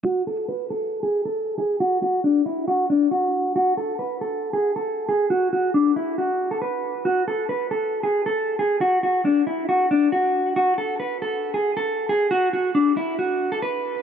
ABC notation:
X:1
M:4/4
L:1/16
Q:1/4=137
K:F#m
V:1 name="Clean electric guitar"
F2 A2 B2 A3 G2 A3 G2 | F2 F2 D2 E2 F2 D2 F4 | F2 A2 B2 A3 G2 A3 G2 | F2 F2 D2 E2 F3 A B4 |
F2 A2 B2 A3 G2 A3 G2 | F2 F2 D2 E2 F2 D2 F4 | F2 A2 B2 A3 G2 A3 G2 | F2 F2 D2 E2 F3 A B4 |]